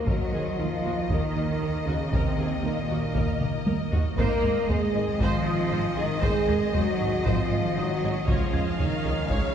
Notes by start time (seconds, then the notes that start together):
Already playing: C5 C6
0.07 D#2 D#3 F#3 A#3 F#4 A#4 D#5, taiko
0.33 D#2 D#3 G#4
0.58 D#2 D#3 F3 F4 A#4
0.84 D#2 F#4
1.10 D#2 D#3 D#4 A#4, taiko
1.36 D#2
1.61 D#2 A#4
1.86 D#2 C#3 C#4 F#4
2.12 D#2 C3 C4 A#4, taiko
2.38 D#2 D#3 G#4
2.64 D#2 A#2 D#3 A#3 A#4
2.89 D#2 F#4
3.15 D#2 A#4, taiko
3.41 D#2, taiko mid
3.66 D#2 A#4, taiko high
3.92 D#2 F#4, taiko low
4.17 G#1 G#2 D#3 A#3 C4 G#4 A#4 C5 D#5, taiko
4.43 G#1 G#3 A#4, taiko low
4.69 G#1 G#3 G#4 C5, taiko low
4.94 G#1 G#2 G#4
5.20 G#1 G#2 F3 F4 C5, taiko
5.46 G#2 D#5 D#6
5.71 G#1 G#2 C5
5.97 G#1 G#2 D#3 D#4 G#4
6.22 G#1 G#2 G#3 G#4 C5, taiko
6.49 G#1 G#3 A#4 A#6, taiko low
6.73 G#1 F#3 G#3 F#4 C5, taiko low
7.00 G#1 G#2 G#4
7.25 G#1 G#2 F3 F4 C5, taiko
7.51 G#2
7.76 G#1 G#2 F#3 F#4 C5 D#6
8.02 G#1 G#2 G#4
8.27 C#2 F3 C#4 F4 G#4 C#5 F5, taiko, riser
8.53 C#2 C#3 C5 G#6, taiko low
8.78 C#2 C#3 D#3 D#4 C#5, taiko low
9.04 C#2 G#4
9.30 C#2 C#3 C#4 C#5, taiko